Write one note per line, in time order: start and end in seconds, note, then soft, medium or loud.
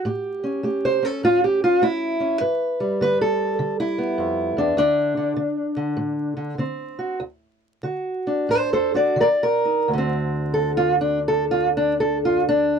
0.05 0.60 A2 medium
0.05 0.64 G4 medium
0.44 1.01 C#4 soft
0.63 1.19 A3 medium
0.63 1.05 G4 soft
0.85 1.04 C5 loud
1.03 2.19 C#4 soft
1.03 1.24 A4 medium
1.24 1.78 A2 medium
1.24 1.44 F4 loud
1.44 1.63 G4 medium
1.64 1.83 F4 medium
1.82 2.37 A3 medium
1.82 2.41 E4 loud
2.20 2.38 C#4 soft
2.41 2.96 G2 medium
2.41 3.00 B4 medium
2.80 4.58 G3 soft
3.01 3.56 D3 medium
3.01 3.21 B4 loud
3.21 3.79 A4 medium
3.59 4.14 D3 medium
3.80 4.58 E4 medium
3.98 4.77 B3 soft
4.18 4.57 F2 medium
4.57 4.77 E2 medium
4.57 4.77 D4 medium
4.77 5.32 D2 medium
4.77 5.17 D3 medium
4.77 6.57 D4 loud
5.17 5.36 D3 soft
5.37 5.75 D3 medium
5.76 6.36 D3 soft
5.97 6.53 A2 medium
6.37 6.57 D3 soft
6.58 7.15 D3 medium
6.58 7.18 C4 soft
6.99 7.17 F#4 soft
7.20 7.79 D2 medium
7.83 8.45 D3 medium
7.83 8.50 F#4 soft
8.27 8.93 D4 soft
8.49 9.13 A2 medium
8.49 8.72 A4 medium
8.49 8.72 C5 medium
8.73 8.95 A4 medium
8.73 8.96 C5 medium
8.94 9.15 D4 soft
8.94 9.18 F#4 medium
8.94 9.19 D5 medium
9.16 9.84 D#3 medium
9.20 9.27 A#4 medium
9.20 9.43 D5 loud
9.43 9.90 A#4 loud
9.65 9.87 D#4 soft
9.88 12.79 D2 medium
9.94 12.79 D3 medium
9.98 12.79 C4 medium
10.54 10.70 A4 medium
10.77 10.94 F4 loud
11.01 11.18 D4 medium
11.28 11.44 A4 medium
11.51 11.68 F4 medium
11.77 11.93 D4 medium
12.00 12.17 A4 medium
12.25 12.42 F4 medium
12.49 12.79 D4 loud